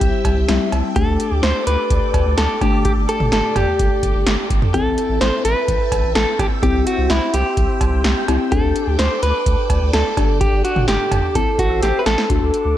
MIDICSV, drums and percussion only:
0, 0, Header, 1, 2, 480
1, 0, Start_track
1, 0, Tempo, 472441
1, 975, Time_signature, 4, 2, 24, 8
1, 12982, End_track
2, 0, Start_track
2, 0, Title_t, "Drums"
2, 13, Note_on_c, 9, 36, 104
2, 13, Note_on_c, 9, 42, 81
2, 115, Note_off_c, 9, 36, 0
2, 115, Note_off_c, 9, 42, 0
2, 252, Note_on_c, 9, 56, 64
2, 253, Note_on_c, 9, 36, 77
2, 253, Note_on_c, 9, 42, 83
2, 353, Note_off_c, 9, 56, 0
2, 354, Note_off_c, 9, 36, 0
2, 355, Note_off_c, 9, 42, 0
2, 492, Note_on_c, 9, 38, 122
2, 493, Note_on_c, 9, 42, 81
2, 594, Note_off_c, 9, 38, 0
2, 595, Note_off_c, 9, 42, 0
2, 735, Note_on_c, 9, 56, 70
2, 736, Note_on_c, 9, 42, 68
2, 837, Note_off_c, 9, 56, 0
2, 838, Note_off_c, 9, 42, 0
2, 974, Note_on_c, 9, 42, 74
2, 975, Note_on_c, 9, 36, 122
2, 1076, Note_off_c, 9, 42, 0
2, 1077, Note_off_c, 9, 36, 0
2, 1217, Note_on_c, 9, 42, 80
2, 1319, Note_off_c, 9, 42, 0
2, 1452, Note_on_c, 9, 38, 111
2, 1458, Note_on_c, 9, 42, 69
2, 1554, Note_off_c, 9, 38, 0
2, 1560, Note_off_c, 9, 42, 0
2, 1696, Note_on_c, 9, 42, 83
2, 1798, Note_off_c, 9, 42, 0
2, 1935, Note_on_c, 9, 36, 103
2, 1935, Note_on_c, 9, 42, 81
2, 2036, Note_off_c, 9, 36, 0
2, 2037, Note_off_c, 9, 42, 0
2, 2174, Note_on_c, 9, 36, 77
2, 2174, Note_on_c, 9, 56, 66
2, 2176, Note_on_c, 9, 42, 78
2, 2276, Note_off_c, 9, 36, 0
2, 2276, Note_off_c, 9, 56, 0
2, 2277, Note_off_c, 9, 42, 0
2, 2414, Note_on_c, 9, 38, 118
2, 2415, Note_on_c, 9, 42, 83
2, 2515, Note_off_c, 9, 38, 0
2, 2516, Note_off_c, 9, 42, 0
2, 2655, Note_on_c, 9, 36, 107
2, 2656, Note_on_c, 9, 56, 69
2, 2657, Note_on_c, 9, 42, 69
2, 2757, Note_off_c, 9, 36, 0
2, 2757, Note_off_c, 9, 56, 0
2, 2759, Note_off_c, 9, 42, 0
2, 2895, Note_on_c, 9, 36, 119
2, 2895, Note_on_c, 9, 42, 74
2, 2996, Note_off_c, 9, 42, 0
2, 2997, Note_off_c, 9, 36, 0
2, 3138, Note_on_c, 9, 42, 81
2, 3239, Note_off_c, 9, 42, 0
2, 3254, Note_on_c, 9, 47, 92
2, 3355, Note_off_c, 9, 47, 0
2, 3373, Note_on_c, 9, 38, 113
2, 3378, Note_on_c, 9, 42, 70
2, 3474, Note_off_c, 9, 38, 0
2, 3480, Note_off_c, 9, 42, 0
2, 3614, Note_on_c, 9, 45, 101
2, 3614, Note_on_c, 9, 56, 72
2, 3616, Note_on_c, 9, 42, 82
2, 3715, Note_off_c, 9, 45, 0
2, 3715, Note_off_c, 9, 56, 0
2, 3718, Note_off_c, 9, 42, 0
2, 3854, Note_on_c, 9, 36, 105
2, 3855, Note_on_c, 9, 42, 85
2, 3956, Note_off_c, 9, 36, 0
2, 3957, Note_off_c, 9, 42, 0
2, 4094, Note_on_c, 9, 36, 79
2, 4095, Note_on_c, 9, 42, 80
2, 4195, Note_off_c, 9, 36, 0
2, 4197, Note_off_c, 9, 42, 0
2, 4334, Note_on_c, 9, 38, 121
2, 4334, Note_on_c, 9, 42, 85
2, 4435, Note_off_c, 9, 38, 0
2, 4436, Note_off_c, 9, 42, 0
2, 4575, Note_on_c, 9, 36, 103
2, 4577, Note_on_c, 9, 42, 68
2, 4677, Note_off_c, 9, 36, 0
2, 4679, Note_off_c, 9, 42, 0
2, 4695, Note_on_c, 9, 45, 103
2, 4797, Note_off_c, 9, 45, 0
2, 4816, Note_on_c, 9, 36, 116
2, 4816, Note_on_c, 9, 42, 73
2, 4917, Note_off_c, 9, 36, 0
2, 4917, Note_off_c, 9, 42, 0
2, 5058, Note_on_c, 9, 42, 79
2, 5159, Note_off_c, 9, 42, 0
2, 5293, Note_on_c, 9, 38, 115
2, 5299, Note_on_c, 9, 42, 69
2, 5395, Note_off_c, 9, 38, 0
2, 5401, Note_off_c, 9, 42, 0
2, 5536, Note_on_c, 9, 42, 85
2, 5638, Note_off_c, 9, 42, 0
2, 5774, Note_on_c, 9, 36, 105
2, 5775, Note_on_c, 9, 42, 84
2, 5876, Note_off_c, 9, 36, 0
2, 5877, Note_off_c, 9, 42, 0
2, 6013, Note_on_c, 9, 36, 82
2, 6013, Note_on_c, 9, 56, 65
2, 6014, Note_on_c, 9, 42, 81
2, 6114, Note_off_c, 9, 56, 0
2, 6115, Note_off_c, 9, 36, 0
2, 6116, Note_off_c, 9, 42, 0
2, 6252, Note_on_c, 9, 38, 123
2, 6253, Note_on_c, 9, 42, 87
2, 6354, Note_off_c, 9, 38, 0
2, 6354, Note_off_c, 9, 42, 0
2, 6495, Note_on_c, 9, 36, 104
2, 6496, Note_on_c, 9, 56, 69
2, 6497, Note_on_c, 9, 42, 69
2, 6596, Note_off_c, 9, 36, 0
2, 6598, Note_off_c, 9, 56, 0
2, 6599, Note_off_c, 9, 42, 0
2, 6735, Note_on_c, 9, 36, 120
2, 6735, Note_on_c, 9, 42, 76
2, 6837, Note_off_c, 9, 36, 0
2, 6837, Note_off_c, 9, 42, 0
2, 6977, Note_on_c, 9, 42, 79
2, 7079, Note_off_c, 9, 42, 0
2, 7211, Note_on_c, 9, 38, 114
2, 7217, Note_on_c, 9, 42, 68
2, 7313, Note_off_c, 9, 38, 0
2, 7319, Note_off_c, 9, 42, 0
2, 7454, Note_on_c, 9, 42, 87
2, 7556, Note_off_c, 9, 42, 0
2, 7693, Note_on_c, 9, 36, 106
2, 7693, Note_on_c, 9, 42, 80
2, 7795, Note_off_c, 9, 36, 0
2, 7795, Note_off_c, 9, 42, 0
2, 7933, Note_on_c, 9, 36, 83
2, 7933, Note_on_c, 9, 56, 65
2, 7934, Note_on_c, 9, 42, 81
2, 8034, Note_off_c, 9, 56, 0
2, 8035, Note_off_c, 9, 36, 0
2, 8036, Note_off_c, 9, 42, 0
2, 8172, Note_on_c, 9, 38, 123
2, 8173, Note_on_c, 9, 42, 86
2, 8274, Note_off_c, 9, 38, 0
2, 8275, Note_off_c, 9, 42, 0
2, 8415, Note_on_c, 9, 56, 69
2, 8417, Note_on_c, 9, 42, 66
2, 8517, Note_off_c, 9, 56, 0
2, 8518, Note_off_c, 9, 42, 0
2, 8654, Note_on_c, 9, 42, 73
2, 8655, Note_on_c, 9, 36, 122
2, 8756, Note_off_c, 9, 36, 0
2, 8756, Note_off_c, 9, 42, 0
2, 8897, Note_on_c, 9, 42, 81
2, 8999, Note_off_c, 9, 42, 0
2, 9132, Note_on_c, 9, 38, 113
2, 9138, Note_on_c, 9, 42, 71
2, 9233, Note_off_c, 9, 38, 0
2, 9239, Note_off_c, 9, 42, 0
2, 9375, Note_on_c, 9, 42, 83
2, 9477, Note_off_c, 9, 42, 0
2, 9614, Note_on_c, 9, 36, 105
2, 9615, Note_on_c, 9, 42, 86
2, 9716, Note_off_c, 9, 36, 0
2, 9717, Note_off_c, 9, 42, 0
2, 9853, Note_on_c, 9, 36, 82
2, 9853, Note_on_c, 9, 56, 69
2, 9854, Note_on_c, 9, 42, 81
2, 9954, Note_off_c, 9, 56, 0
2, 9955, Note_off_c, 9, 36, 0
2, 9956, Note_off_c, 9, 42, 0
2, 10093, Note_on_c, 9, 38, 117
2, 10094, Note_on_c, 9, 42, 86
2, 10194, Note_off_c, 9, 38, 0
2, 10195, Note_off_c, 9, 42, 0
2, 10334, Note_on_c, 9, 36, 105
2, 10335, Note_on_c, 9, 56, 68
2, 10336, Note_on_c, 9, 42, 67
2, 10436, Note_off_c, 9, 36, 0
2, 10437, Note_off_c, 9, 56, 0
2, 10438, Note_off_c, 9, 42, 0
2, 10575, Note_on_c, 9, 36, 115
2, 10575, Note_on_c, 9, 42, 75
2, 10677, Note_off_c, 9, 36, 0
2, 10677, Note_off_c, 9, 42, 0
2, 10817, Note_on_c, 9, 42, 80
2, 10919, Note_off_c, 9, 42, 0
2, 10933, Note_on_c, 9, 47, 92
2, 11034, Note_off_c, 9, 47, 0
2, 11052, Note_on_c, 9, 38, 109
2, 11057, Note_on_c, 9, 42, 70
2, 11153, Note_off_c, 9, 38, 0
2, 11159, Note_off_c, 9, 42, 0
2, 11292, Note_on_c, 9, 45, 99
2, 11292, Note_on_c, 9, 56, 72
2, 11295, Note_on_c, 9, 42, 85
2, 11394, Note_off_c, 9, 45, 0
2, 11394, Note_off_c, 9, 56, 0
2, 11396, Note_off_c, 9, 42, 0
2, 11534, Note_on_c, 9, 36, 105
2, 11535, Note_on_c, 9, 42, 83
2, 11635, Note_off_c, 9, 36, 0
2, 11636, Note_off_c, 9, 42, 0
2, 11773, Note_on_c, 9, 36, 82
2, 11775, Note_on_c, 9, 42, 81
2, 11875, Note_off_c, 9, 36, 0
2, 11876, Note_off_c, 9, 42, 0
2, 12014, Note_on_c, 9, 42, 83
2, 12015, Note_on_c, 9, 38, 60
2, 12116, Note_off_c, 9, 42, 0
2, 12117, Note_off_c, 9, 38, 0
2, 12254, Note_on_c, 9, 38, 92
2, 12256, Note_on_c, 9, 42, 70
2, 12356, Note_off_c, 9, 38, 0
2, 12358, Note_off_c, 9, 42, 0
2, 12375, Note_on_c, 9, 38, 96
2, 12477, Note_off_c, 9, 38, 0
2, 12495, Note_on_c, 9, 36, 110
2, 12496, Note_on_c, 9, 42, 71
2, 12597, Note_off_c, 9, 36, 0
2, 12597, Note_off_c, 9, 42, 0
2, 12738, Note_on_c, 9, 42, 75
2, 12840, Note_off_c, 9, 42, 0
2, 12982, End_track
0, 0, End_of_file